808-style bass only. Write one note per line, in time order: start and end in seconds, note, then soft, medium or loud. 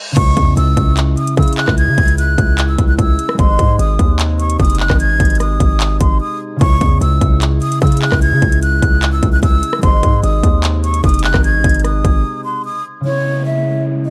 0.17 0.36 C#2 loud
0.37 0.56 E2 loud
0.57 0.76 C#2 loud
0.77 1.16 C#2 loud
1.37 1.66 C#3 loud
1.68 1.89 C#2 loud
1.88 1.97 C#3 loud
1.98 2.37 C#2 loud
2.38 2.77 C#2 loud
2.79 2.98 C#2 loud
2.99 3.18 C#2 loud
3.39 3.58 G#1 loud
3.59 3.78 G#2 loud
3.79 3.98 G#1 loud
3.99 4.57 D#2 loud
4.60 4.89 F#1 loud
4.90 5.11 G#1 loud
5.10 5.20 A1 loud
5.20 5.59 G#1 loud
5.60 5.99 G#1 loud
6.01 6.20 G#1 loud
6.61 6.80 C#2 loud
6.81 7.00 E2 loud
7.01 7.21 C#2 loud
7.21 7.60 C#2 loud
7.82 8.11 C#3 loud
8.12 8.34 C#2 loud
8.32 8.42 C#3 loud
8.42 8.81 C#2 loud
8.82 9.21 C#2 loud
9.23 9.42 C#2 loud
9.43 9.62 C#2 loud
9.83 10.02 G#1 loud
10.03 10.23 G#2 loud
10.23 10.43 G#1 loud
10.43 11.01 D#2 loud
11.04 11.33 F#1 loud
11.34 11.56 G#1 loud
11.54 11.64 A1 loud
11.64 12.03 G#1 loud
12.05 12.24 G#1 loud